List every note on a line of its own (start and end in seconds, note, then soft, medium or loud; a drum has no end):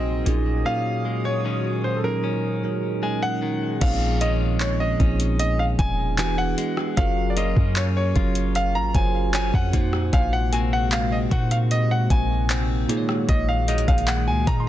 0.00 0.23 A#1 loud
0.00 0.25 A#2 medium
0.00 0.28 C3 medium
0.00 0.26 F#3 medium
0.00 0.68 G#3 medium
0.00 0.28 A#3 medium
0.00 0.29 C4 medium
0.00 0.34 C4 medium
0.00 0.27 D#4 medium
0.00 0.23 F#4 medium
0.00 0.27 F#4 medium
0.00 1.08 F#4 medium
0.00 0.28 G#4 medium
0.00 3.77 A#4 medium
0.00 0.68 D#5 medium
0.00 3.77 G#5 medium
0.00 0.23 C6 medium
0.25 0.64 A#1 loud
0.25 1.62 A#2 medium
0.25 0.64 A#2 medium
0.25 1.62 F#3 medium
0.25 1.62 C#4 medium
0.25 1.63 D#4 medium
0.25 3.78 F#4 medium
0.25 1.63 G#4 medium
0.25 3.78 D#6 medium
0.25 closed hi-hat medium
0.65 3.80 A#2 medium
0.65 1.45 C#4 medium
0.65 1.21 F5 loud
1.05 1.45 G#3 medium
1.25 1.80 C#5 loud
1.45 3.42 D#3 medium
1.45 3.02 G#3 medium
1.45 2.23 C#4 medium
1.84 1.97 C5 medium
1.97 2.04 A4 medium
2.03 2.54 A#2 medium
2.03 2.55 F#3 medium
2.03 2.55 C#4 medium
2.03 2.55 D#4 medium
2.03 2.56 G#4 medium
2.03 3.18 A#4 medium
2.24 4.21 C#4 medium
2.62 3.65 A#2 medium
2.62 3.65 F#3 medium
2.62 3.65 C#4 medium
2.62 3.66 D#4 medium
2.62 3.66 A#4 medium
3.03 4.21 G#3 medium
3.03 3.23 G#5 medium
3.23 3.83 F#5 loud
3.42 4.20 D#3 medium
3.81 4.96 A#1 loud
3.81 4.83 A#2 loud
3.81 6.26 A#2 medium
3.81 4.83 F3 medium
3.81 4.84 C4 medium
3.81 4.84 C#4 medium
3.81 4.84 D#4 medium
3.81 4.84 G#4 loud
3.81 4.22 F5 medium
3.81 kick loud
3.81 closed hi-hat medium
3.81 crash loud
4.21 6.18 D#3 medium
4.21 4.60 G#3 medium
4.21 4.99 C#4 medium
4.21 4.96 D#5 medium
4.21 4.30 D#5 medium
4.21 closed hi-hat medium
4.60 6.26 G#3 medium
4.60 4.81 C#5 medium
4.60 clap loud
4.60 closed hi-hat medium
4.80 5.35 D#5 medium
4.99 5.76 A#1 loud
4.99 6.18 A#2 medium
4.99 6.18 F3 medium
4.99 6.18 C4 medium
4.99 6.26 C#4 medium
4.99 6.19 C#4 medium
4.99 6.19 D#4 medium
4.99 6.19 G#4 medium
4.99 kick loud
4.99 closed hi-hat soft
5.20 closed hi-hat medium
5.39 5.58 D#5 loud
5.39 closed hi-hat medium
5.59 5.64 F5 medium
5.79 6.55 E1 loud
5.79 6.16 G#5 loud
5.79 kick medium
5.79 closed hi-hat medium
6.18 6.86 E3 medium
6.18 6.97 E3 medium
6.18 6.86 B3 medium
6.18 6.87 D4 medium
6.18 6.87 F#4 medium
6.18 6.26 G4 medium
6.18 6.39 G#5 loud
6.18 clap loud
6.18 closed hi-hat medium
6.27 6.90 G#4 medium
6.38 6.99 F#5 loud
6.58 7.05 G#3 medium
6.58 closed hi-hat medium
6.77 cross-stick loud
6.96 7.54 F#1 loud
6.96 7.99 F#3 loud
6.96 10.47 F#3 medium
6.96 7.99 C#4 medium
6.96 8.00 F4 medium
6.96 8.00 G#4 loud
6.96 8.00 A#4 loud
6.96 7.31 F5 loud
6.96 kick loud
6.96 closed hi-hat medium
7.30 7.37 D5 medium
7.37 10.52 A#3 medium
7.37 7.75 C#4 medium
7.37 8.14 F4 medium
7.37 7.78 D#5 medium
7.37 closed hi-hat medium
7.56 8.13 F#2 medium
7.56 kick medium
7.76 9.33 C#4 medium
7.76 7.82 C#5 loud
7.76 clap loud
7.76 closed hi-hat medium
7.97 8.51 C#5 medium
8.15 8.77 F#1 loud
8.15 8.83 F#3 medium
8.15 8.84 C#4 medium
8.15 9.81 F4 medium
8.15 8.84 F4 medium
8.15 8.84 G#4 medium
8.15 8.85 A#4 medium
8.15 kick loud
8.15 closed hi-hat soft
8.35 closed hi-hat medium
8.55 8.76 F5 loud
8.55 closed hi-hat medium
8.75 8.94 G#1 loud
8.75 8.93 A#5 loud
8.94 9.51 F#1 loud
8.94 9.73 F#3 medium
8.94 9.73 C#4 medium
8.94 9.74 F4 medium
8.94 9.74 G#4 medium
8.94 9.74 C5 medium
8.94 9.33 G#5 loud
8.94 kick medium
8.94 closed hi-hat medium
9.34 9.81 C#4 medium
9.34 9.55 G#5 loud
9.34 clap loud
9.34 closed hi-hat medium
9.54 10.11 F2 loud
9.54 10.15 F#5 loud
9.54 kick loud
9.73 11.09 A#2 medium
9.73 10.12 A#2 medium
9.73 11.09 A#3 medium
9.73 11.10 D#4 medium
9.73 11.10 F#4 medium
9.73 11.10 C5 medium
9.73 kick loud
9.73 closed hi-hat medium
9.93 cross-stick loud
10.13 11.27 A#1 loud
10.13 12.88 A#2 medium
10.13 12.86 C3 medium
10.13 12.86 G#3 medium
10.13 14.69 A#3 medium
10.13 12.86 F#4 loud
10.13 10.32 F5 loud
10.13 10.88 G#5 medium
10.13 kick loud
10.13 closed hi-hat medium
10.33 10.51 F#5 loud
10.53 13.68 A#3 medium
10.53 10.91 C4 medium
10.53 11.31 F#4 medium
10.53 10.58 G#5 loud
10.53 closed hi-hat medium
10.73 10.93 F#5 loud
10.92 12.49 C4 medium
10.92 11.13 F5 loud
10.92 clap loud
10.92 closed hi-hat medium
11.12 11.17 D#5 medium
11.30 12.67 A#2 medium
11.30 12.07 A#2 loud
11.30 12.67 A#3 medium
11.30 12.68 D#4 medium
11.30 13.72 F#4 medium
11.30 12.68 F#4 medium
11.30 11.39 A#4 medium
11.30 11.52 F#5 medium
11.30 kick loud
11.30 closed hi-hat soft
11.39 12.71 C5 medium
11.51 11.56 F5 medium
11.51 closed hi-hat medium
11.71 11.89 D#5 loud
11.71 closed hi-hat medium
11.91 12.09 F#5 medium
12.10 12.86 A#1 loud
12.10 12.86 G#5 loud
12.10 kick medium
12.10 closed hi-hat medium
12.50 12.97 C4 medium
12.50 clap loud
12.50 closed hi-hat medium
12.88 14.25 A#2 medium
12.88 13.27 A#2 medium
12.88 14.69 D#3 medium
12.88 14.69 G#3 medium
12.88 14.25 A#3 medium
12.88 14.25 D#4 medium
12.88 14.46 F#4 medium
12.88 14.26 G#4 medium
12.88 12.96 C5 medium
12.88 closed hi-hat medium
12.97 14.29 C#5 medium
13.09 cross-stick loud
13.29 13.86 A#1 loud
13.29 14.69 A#2 medium
13.29 13.49 D#5 loud
13.29 kick loud
13.29 closed hi-hat medium
13.49 13.69 F5 medium
13.68 14.69 D#3 medium
13.68 14.07 G#3 medium
13.68 14.47 D#4 medium
13.68 13.89 D#5 medium
13.68 closed hi-hat medium
13.78 closed hi-hat medium
13.88 14.29 A#1 loud
13.88 14.06 F5 medium
13.88 kick medium
13.88 closed hi-hat soft
13.98 closed hi-hat soft
14.07 14.69 G#3 medium
14.07 14.28 F#5 loud
14.07 clap loud
14.07 closed hi-hat medium
14.28 14.46 C#2 loud
14.28 14.48 G#5 medium
14.46 14.69 A#2 medium
14.46 14.69 A#2 loud
14.46 14.69 A#3 medium
14.46 14.69 D#4 medium
14.46 14.69 G#4 medium
14.46 14.69 A#4 medium
14.46 14.59 A#5 loud
14.46 kick medium
14.46 closed hi-hat medium
14.60 14.67 C6 medium